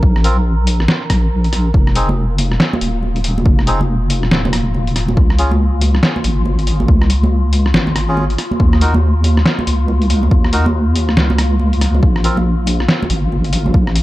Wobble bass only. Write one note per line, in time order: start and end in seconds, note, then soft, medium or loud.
0.03 0.87 A#1 loud
1.10 1.73 A#1 loud
1.74 2.59 F1 medium
2.81 3.44 D#1 loud
3.46 4.30 F1 medium
4.31 5.16 D#1 loud
5.17 6.01 C#2 medium
6.24 6.87 G#1 loud
6.88 7.73 C#2 loud
7.74 8.37 G#1 loud
8.60 9.44 D#2 medium
9.67 10.30 C#2 loud
10.31 11.16 D#2 medium
11.17 12.01 C#2 loud
12.03 12.87 A#1 loud
13.10 13.73 G#1 loud
13.74 14.03 A#1 medium